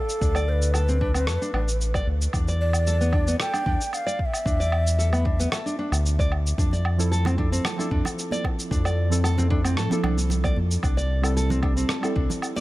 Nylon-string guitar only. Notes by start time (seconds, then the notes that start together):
0.21 D4
0.35 D5
0.75 A4
0.89 C4
1.01 D4
1.15 C4
1.27 A4
1.42 D4
1.54 D4
1.95 D5
2.34 D4
2.48 D5
2.87 A4
3.01 B3
3.14 D4
3.28 B3
3.40 A4
3.54 D4
3.67 D4
4.07 D5
4.46 D4
4.60 D5
4.99 A4
5.12 B3
5.25 D4
5.40 B3
5.53 A4
5.66 D4
5.79 D4
6.19 D5
6.59 D4
6.73 D5
7.12 A4
7.26 C4
7.38 D4
7.52 C4
7.65 A4
7.79 D4
7.91 D4
8.32 D5
8.71 D4
8.85 D5
9.24 A4
9.38 C4
9.50 D4
9.64 C4
9.77 A4
9.91 D4
10.04 D4
10.44 D5
10.83 D4
10.97 D5
11.37 A4
11.50 C4
11.63 D4
11.77 C4
11.89 A4
12.03 D4
12.15 D4
12.56 D5